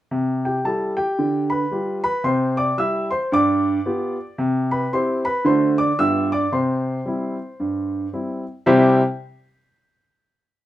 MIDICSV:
0, 0, Header, 1, 2, 480
1, 0, Start_track
1, 0, Key_signature, 0, "major"
1, 0, Tempo, 533808
1, 106, Time_signature, 4, 2, 24, 8
1, 9583, End_track
2, 0, Start_track
2, 0, Title_t, "Grand piano"
2, 0, Program_c, 0, 0
2, 101, Note_on_c, 0, 48, 74
2, 406, Note_on_c, 0, 79, 53
2, 415, Note_on_c, 0, 67, 40
2, 510, Note_off_c, 0, 48, 0
2, 565, Note_off_c, 0, 79, 0
2, 574, Note_off_c, 0, 67, 0
2, 579, Note_on_c, 0, 55, 38
2, 580, Note_on_c, 0, 64, 34
2, 586, Note_on_c, 0, 81, 64
2, 587, Note_on_c, 0, 67, 40
2, 597, Note_on_c, 0, 69, 46
2, 828, Note_off_c, 0, 81, 0
2, 844, Note_off_c, 0, 55, 0
2, 845, Note_off_c, 0, 64, 0
2, 850, Note_off_c, 0, 67, 0
2, 857, Note_off_c, 0, 69, 0
2, 870, Note_on_c, 0, 79, 70
2, 880, Note_on_c, 0, 67, 55
2, 1067, Note_on_c, 0, 50, 60
2, 1278, Note_off_c, 0, 79, 0
2, 1322, Note_off_c, 0, 67, 0
2, 1347, Note_on_c, 0, 83, 72
2, 1365, Note_on_c, 0, 71, 53
2, 1474, Note_off_c, 0, 50, 0
2, 1540, Note_on_c, 0, 55, 34
2, 1543, Note_on_c, 0, 65, 35
2, 1550, Note_on_c, 0, 67, 36
2, 1756, Note_off_c, 0, 83, 0
2, 1804, Note_off_c, 0, 71, 0
2, 1805, Note_off_c, 0, 55, 0
2, 1807, Note_off_c, 0, 65, 0
2, 1812, Note_off_c, 0, 67, 0
2, 1831, Note_on_c, 0, 83, 85
2, 1836, Note_on_c, 0, 71, 63
2, 1996, Note_off_c, 0, 83, 0
2, 2013, Note_on_c, 0, 48, 73
2, 2014, Note_off_c, 0, 71, 0
2, 2016, Note_on_c, 0, 84, 75
2, 2035, Note_on_c, 0, 72, 59
2, 2263, Note_off_c, 0, 84, 0
2, 2296, Note_off_c, 0, 72, 0
2, 2313, Note_on_c, 0, 86, 79
2, 2321, Note_on_c, 0, 74, 58
2, 2426, Note_off_c, 0, 48, 0
2, 2477, Note_off_c, 0, 86, 0
2, 2496, Note_off_c, 0, 74, 0
2, 2497, Note_on_c, 0, 55, 40
2, 2502, Note_on_c, 0, 88, 69
2, 2503, Note_on_c, 0, 64, 41
2, 2506, Note_on_c, 0, 67, 41
2, 2515, Note_on_c, 0, 76, 63
2, 2746, Note_off_c, 0, 88, 0
2, 2763, Note_off_c, 0, 55, 0
2, 2767, Note_off_c, 0, 64, 0
2, 2770, Note_off_c, 0, 67, 0
2, 2776, Note_off_c, 0, 76, 0
2, 2793, Note_on_c, 0, 84, 73
2, 2803, Note_on_c, 0, 72, 56
2, 2957, Note_off_c, 0, 84, 0
2, 2977, Note_off_c, 0, 72, 0
2, 2985, Note_on_c, 0, 43, 82
2, 2999, Note_on_c, 0, 86, 90
2, 3005, Note_on_c, 0, 74, 65
2, 3393, Note_off_c, 0, 43, 0
2, 3470, Note_on_c, 0, 59, 52
2, 3474, Note_on_c, 0, 65, 37
2, 3476, Note_on_c, 0, 67, 48
2, 3733, Note_off_c, 0, 59, 0
2, 3736, Note_off_c, 0, 65, 0
2, 3738, Note_off_c, 0, 67, 0
2, 3810, Note_off_c, 0, 86, 0
2, 3920, Note_off_c, 0, 74, 0
2, 3942, Note_on_c, 0, 48, 80
2, 4239, Note_on_c, 0, 83, 69
2, 4247, Note_on_c, 0, 71, 57
2, 4352, Note_off_c, 0, 48, 0
2, 4401, Note_off_c, 0, 83, 0
2, 4420, Note_off_c, 0, 71, 0
2, 4430, Note_on_c, 0, 60, 46
2, 4431, Note_on_c, 0, 64, 48
2, 4435, Note_on_c, 0, 84, 77
2, 4439, Note_on_c, 0, 67, 49
2, 4450, Note_on_c, 0, 72, 52
2, 4674, Note_off_c, 0, 84, 0
2, 4694, Note_off_c, 0, 60, 0
2, 4694, Note_off_c, 0, 64, 0
2, 4700, Note_off_c, 0, 67, 0
2, 4705, Note_off_c, 0, 72, 0
2, 4720, Note_on_c, 0, 83, 84
2, 4729, Note_on_c, 0, 71, 67
2, 4882, Note_off_c, 0, 83, 0
2, 4897, Note_on_c, 0, 50, 75
2, 4902, Note_off_c, 0, 71, 0
2, 4904, Note_on_c, 0, 57, 40
2, 4905, Note_on_c, 0, 62, 36
2, 4908, Note_on_c, 0, 84, 70
2, 4910, Note_on_c, 0, 66, 44
2, 4916, Note_on_c, 0, 72, 60
2, 5151, Note_off_c, 0, 84, 0
2, 5169, Note_off_c, 0, 57, 0
2, 5170, Note_off_c, 0, 62, 0
2, 5174, Note_off_c, 0, 66, 0
2, 5178, Note_off_c, 0, 72, 0
2, 5199, Note_on_c, 0, 86, 83
2, 5209, Note_on_c, 0, 74, 60
2, 5310, Note_off_c, 0, 50, 0
2, 5362, Note_off_c, 0, 86, 0
2, 5382, Note_on_c, 0, 55, 41
2, 5383, Note_off_c, 0, 74, 0
2, 5385, Note_on_c, 0, 88, 80
2, 5386, Note_on_c, 0, 43, 65
2, 5388, Note_on_c, 0, 59, 40
2, 5394, Note_on_c, 0, 65, 37
2, 5395, Note_on_c, 0, 76, 52
2, 5630, Note_off_c, 0, 88, 0
2, 5648, Note_off_c, 0, 55, 0
2, 5652, Note_off_c, 0, 59, 0
2, 5657, Note_off_c, 0, 65, 0
2, 5658, Note_off_c, 0, 76, 0
2, 5684, Note_on_c, 0, 86, 78
2, 5692, Note_on_c, 0, 74, 67
2, 5795, Note_off_c, 0, 43, 0
2, 5845, Note_off_c, 0, 86, 0
2, 5865, Note_off_c, 0, 74, 0
2, 5866, Note_on_c, 0, 48, 70
2, 5868, Note_on_c, 0, 84, 65
2, 5876, Note_on_c, 0, 72, 49
2, 6276, Note_off_c, 0, 48, 0
2, 6345, Note_on_c, 0, 55, 37
2, 6351, Note_on_c, 0, 60, 32
2, 6356, Note_on_c, 0, 64, 42
2, 6611, Note_off_c, 0, 55, 0
2, 6615, Note_off_c, 0, 60, 0
2, 6618, Note_off_c, 0, 64, 0
2, 6832, Note_on_c, 0, 43, 52
2, 7094, Note_off_c, 0, 84, 0
2, 7240, Note_off_c, 0, 43, 0
2, 7278, Note_off_c, 0, 72, 0
2, 7312, Note_on_c, 0, 55, 31
2, 7314, Note_on_c, 0, 60, 33
2, 7315, Note_on_c, 0, 64, 40
2, 7576, Note_off_c, 0, 55, 0
2, 7577, Note_off_c, 0, 60, 0
2, 7578, Note_off_c, 0, 64, 0
2, 7788, Note_on_c, 0, 55, 70
2, 7790, Note_on_c, 0, 48, 102
2, 7792, Note_on_c, 0, 64, 74
2, 7795, Note_on_c, 0, 67, 89
2, 7796, Note_on_c, 0, 72, 87
2, 7799, Note_on_c, 0, 76, 70
2, 8091, Note_off_c, 0, 55, 0
2, 8092, Note_off_c, 0, 48, 0
2, 8093, Note_off_c, 0, 64, 0
2, 8095, Note_off_c, 0, 67, 0
2, 8095, Note_off_c, 0, 72, 0
2, 8097, Note_off_c, 0, 76, 0
2, 9583, End_track
0, 0, End_of_file